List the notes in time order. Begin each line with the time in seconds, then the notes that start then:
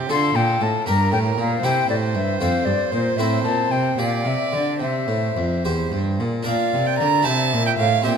Already playing: G4
0.09 D3 D4 F4 A4 C6
0.35 A#2 G5
0.61 A2 A5
0.86 G2 D4 G4 A#4 A#5
1.12 A2 G5
1.38 A#2 F5
1.62 C3 E4 G4 C5 G5
1.89 A2 D5
2.14 G2 E5
2.40 F2 C4 A4 C5 F5
2.65 G2 D5
2.91 A#2 C5
3.17 A2 C4 E4 C5 E5
3.44 A#2 A5
3.71 C3 G5
3.98 A#2 G4 D5 F5
4.25 C3 E5
4.52 D3 D5
4.80 C3 C5 E5
5.08 A2
5.36 F2
5.64 E2 G4 C5
5.91 G2
6.19 A#2
6.43 A#2 D4 A#4 D5 F5
6.47 A#2 D5
6.73 C3
6.87 G5
6.99 D3 A#5
7.22 C3 E4 G4 C5 E5 A5
7.27 C3
7.53 A#2
7.67 G5
7.78 A2 F5
8.02 A#2 C4 G4 C5 E5 G5
8.06 A#2